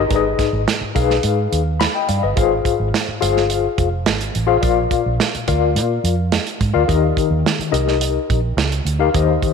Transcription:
0.08 G#1 G#2 D#4 G#4 B4 D5, kick, closed hi-hat
0.16 D#5
0.39 kick, snare, closed hi-hat
0.53 G#1
0.68 snare, closed hi-hat
0.81 muted fingered electric bass stroke
0.95 B1 D#4 G#4 A#4 F5, kick, closed hi-hat
1.02 B4
1.10 snare
1.23 G#2, closed hi-hat
1.52 D#2, closed hi-hat
1.80 B5, snare, closed hi-hat
1.95 D#5 G5
2.08 G2 D5 F5, closed hi-hat
2.23 G1 B4 D#5
2.36 G#1 G#2 F4 G#4 C5 F5, kick, closed hi-hat
2.65 kick, closed hi-hat
2.80 G#1
2.94 snare, closed hi-hat
3.08 muted fingered electric bass stroke
3.21 G1 F4 G#4 C5 F5, closed hi-hat
3.37 snare
3.50 closed hi-hat
3.78 F1, kick, closed hi-hat
4.06 G#1, snare, closed hi-hat
4.21 closed hi-hat
4.35 A1, closed hi-hat
4.47 F4 G#4 C5 F5
4.61 A#1 A#2 F4 A#4 D5 F5, kick, closed hi-hat
4.91 kick, closed hi-hat
5.06 A#1
5.20 snare, closed hi-hat
5.35 muted fingered electric bass stroke, closed hi-hat
5.48 D2 F4 A#4 D5 F5, kick, closed hi-hat
5.76 A#2, closed hi-hat
6.04 F2, closed hi-hat
6.32 snare, closed hi-hat
6.47 closed hi-hat
6.61 G#2, kick, closed hi-hat
6.73 D2 F4 A#4 D5 F5
6.88 D#2 D#3 D#4 G4 A#4 D#5, kick, closed hi-hat
7.17 kick, closed hi-hat
7.31 D#2
7.46 snare, closed hi-hat
7.59 muted fingered electric bass stroke, closed hi-hat
7.72 C2 D#4 G4 A#4 D#5, closed hi-hat
7.88 snare
8.01 closed hi-hat
8.30 A#1, kick, closed hi-hat
8.57 C#2, snare, closed hi-hat
8.72 closed hi-hat
8.85 D2, closed hi-hat
8.99 D#4 G4 A#4 F5
9.14 D#2 D#3 D#4 G4 C5 D#5, kick, closed hi-hat
9.43 kick, closed hi-hat

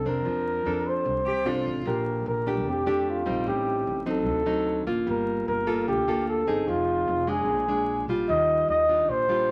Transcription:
Already playing: C3
0.05 F2 C4 D4 A#4
0.25 F2 F3
0.65 F2 C4 D4 A4
0.87 C5
1.05 C2 C3
1.26 G4
1.45 G1 C4 D4 F4 A4
1.66 A1
1.85 A#1 A#2 D4 G4 A#4
2.26 A#1 A#4
2.46 A3 D4 G4
2.66 F2 G4
2.86 A3 D4 G4
3.09 F4
3.26 A#1 G3 C4 D#4
3.46 A1 A2 G4
3.87 A1
4.06 F#3 C4 D#4 A4
4.26 D2 D3
4.46 F#3 C4 D#4
4.87 A1 A#3 F4
5.06 G1 G3 A#4
5.48 G1 A#4
5.67 A#3 F4 A4
5.88 D2 D3 G4
6.08 A#3 F4 A4
6.28 A4
6.47 G1 C4 D#4 G#4
6.67 F1 F3 F4
7.08 F1
7.27 G#3 D4 G#4
7.48 A#1 A#2
7.68 G#3 D4
8.08 A#1 G3 F4
8.29 D#2 D#3 D#5
8.68 D#2 D#5
8.88 G3 D4 F4
9.09 A#1 A#2 C5
9.29 G3 D4 F4

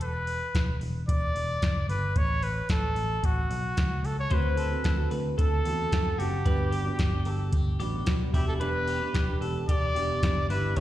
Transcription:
Already playing: E1
0.01 B4, closed hi-hat
0.27 open hi-hat
0.55 E1, kick, snare, closed hi-hat
0.81 E1, open hi-hat
1.08 E1 D5, kick, closed hi-hat
1.35 E1, open hi-hat
1.62 F#1, kick, snare, closed hi-hat
1.89 G1 B4, open hi-hat
2.16 A1 C#5, kick, closed hi-hat
2.43 B4, open hi-hat
2.69 A1 A4, kick, snare, closed hi-hat
2.95 A1, open hi-hat
3.23 A1 F#4, kick, closed hi-hat
3.50 B1, open hi-hat
3.77 C#2, kick, snare, closed hi-hat
4.03 C#2 A4, open hi-hat
4.19 C#5
4.30 D2 D3 A3 C4 F#4 B4 C5, kick, closed hi-hat
4.57 A4, open hi-hat
4.70 A3 C4 F#4
4.84 D2 A4, kick, snare, closed hi-hat
4.97 A3 C4 F#4
5.11 D2 B4, open hi-hat
5.38 D2 A4, kick, closed hi-hat
5.65 E2 D3 A3 C4 F#4 A4, open hi-hat
5.91 F#2 D3 A3 C4 F#4, kick, snare, closed hi-hat
6.18 F#1 D3 A3 C4 F#4 G4, open hi-hat
6.45 G1 G3 B3 D4 B4, kick, closed hi-hat
6.72 G4, open hi-hat
6.85 B3 D4 F#4
6.99 G1 G4, kick, snare, closed hi-hat
7.14 B3 D4
7.25 G1 A4, open hi-hat
7.52 G1 G4, kick, closed hi-hat
7.79 A1 G3 B3 D4 F#4 G4, open hi-hat
8.06 B1 G3 B3 D4 F#4, kick, snare, closed hi-hat
8.32 E1 E3 B3 D4 E4 G4, kick, open hi-hat
8.48 A4
8.60 E3 B3 D4 G4 B4, closed hi-hat
8.88 G4, open hi-hat
9.01 B3 D4 G4
9.14 E1 G4, kick, snare, closed hi-hat
9.28 B3 D4 G4
9.41 E1 A4, open hi-hat
9.68 E1 G4 D5, kick, closed hi-hat
9.95 E1 E3 B3 D4 G4, open hi-hat
10.22 F#1 E3 B3 D4 G4, kick, snare, closed hi-hat
10.49 G1 E3 B3 D4 E4 G4 B4, open hi-hat
10.76 A1 A2 E3 C#5, kick, closed hi-hat

